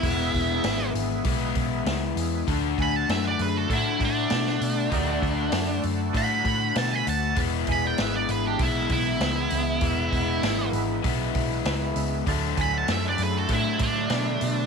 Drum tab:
HH |o-o-o-o-o-o-o-o-|o-o-o-o-o-o-o-o-|o-o-o-o-o-o-o-o-|o-o-o-o-o-o-o-o-|
SD |----o-------o---|----o-------oo--|----o-------o---|----o-------o---|
BD |o-o-----o-o-----|o-o-----o-o-----|o-o-----o-o-----|o-o-----o-o-----|

HH |o-o-o-o-o-o-o-o-|o-o-o-o-o-o-o-o-|
SD |----o-------o---|----o-------o---|
BD |o-o-----o-o-----|o-o-----o-o-----|